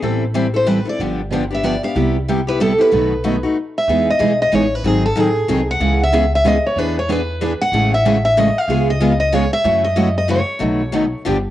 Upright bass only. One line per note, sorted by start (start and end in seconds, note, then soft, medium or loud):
0.02 0.80 A1 medium
0.99 1.76 G1 medium
1.95 2.73 C2 medium
2.92 3.44 B1 medium
3.88 4.14 E2 medium
4.20 4.48 B1 medium
4.52 4.80 A1 medium
4.84 5.10 G#1 medium
5.16 5.43 A1 medium
5.48 5.76 C2 medium
5.80 6.57 C#2 medium
6.76 7.53 E2 medium
7.72 8.49 A1 medium
8.68 9.45 C#2 medium
9.64 10.42 F#2 loud
10.61 11.12 B1 medium
11.26 11.50 G1 medium